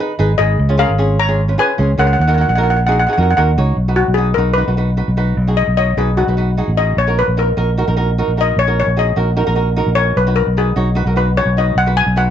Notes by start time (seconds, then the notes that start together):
0.00 D#4 G#4 B4
0.19 G#1 D#4 G#4 B4
0.38 G#1 D#4 G#4 B4 D#5
0.59 C#2
0.69 C#4 F4 G#4
0.78 C#4 F4 G#4 A#4 F5
0.89 G#1
0.98 C#4 F4 G#4
1.20 C#5 A#5
1.28 C#4 F4 G#4
1.48 C#4 F4 B4
1.58 C#4 F4 G#4 B4 G#5
1.78 C#2 C#4 F4 G#4
1.98 C#2 C#4 F4 G#4 A#4 F#5
2.07 F#5
2.13 F#5
2.19 D#2 F#5
2.27 D#4 F#4 A#4 F#5
2.34 D#4 F#4 A#4 F#5
2.41 F#5
2.48 A#1 F#5
2.55 D#4 F#4 A#4 F#5
2.63 F#5
2.70 F#5
2.77 F#5
2.87 D#4 F#4 G#4 F#5
2.92 F#5
3.00 F#5
3.07 D#4 F#4 G#4 F#5
3.13 F#5
3.17 F2 D#4 F#4 A#4
3.23 F#5
3.30 F#5
3.37 D#2 D#4 F#4 A#4 F#5
3.57 C#2 D#4 F#4 C#5
3.77 B1
3.88 D#4 F#4 B4
3.96 F#4
4.08 B1
4.14 D#4 G#4
4.18 F#4 B4
4.34 B1 D#4 A#4
4.38 F#4 B4
4.54 D#4 B4
4.58 F#4 B4
4.68 B1 D#4 F#4 B4
4.77 D#4 F#4 B4
4.97 D#4 F#4 B4
5.08 B1
5.17 D#4 F#4 B4
5.37 B1
5.47 D#4 F#4 G#4
5.57 D#5
5.68 B1
5.77 D#4 F#4 C#5 D#5
5.97 B1 D#4 F#4 G#4 B4
6.17 D#4 F#4 B4
6.27 B1 D#4 F#4 B4
6.37 D#4 F#4 B4
6.57 D#4 F#4 G#4
6.68 A1
6.77 D#4 F#4 G#4 D#5
6.97 A#1 C#5
7.07 D#4 F#4 A#4
7.19 B4
7.28 A#1
7.37 D#4 F#4 A#4
7.57 A#1 D#4 F#4 A#4
7.78 D#4 F#4 A#4
7.87 A#1 D#4 F#4 A#4
7.97 D#4 F#4 A#4
8.18 D#4 F#4 A#4
8.28 A#1
8.37 D#4 F#4 A#4 D#5
8.57 A#1 C#5
8.67 D#4 F#4 A#4
8.80 C#5
8.87 A#1
8.97 D#4 F#4 G#4 D#5
9.16 A#1 D#4 F#4 A#4
9.37 D#4 F#4 A#4
9.46 A#1 D#4 F#4 A#4
9.55 D#4 F#4 A#4
9.76 D#4 F#4 A#4
9.87 A#1
9.95 D#4 F#4 A#4 C#5
10.17 B1 B4
10.27 D#4 F#4 B4
10.36 A#4
10.47 B1
10.57 D#4 F#4 G#4 B4
10.76 B1 D#4 F#4 C#5
10.95 D#4 F#4 B4
11.06 B1 D#4 F#4 A#4
11.16 D#4 F#4 B4
11.37 D#4 F#4 B4 C#5
11.46 B1
11.57 D#4 F#4 B4 D#5
11.76 B1 F#5
11.86 D#4 F#4 B4
11.97 G#5
12.07 B1
12.16 D#4 F#4 B4 F#5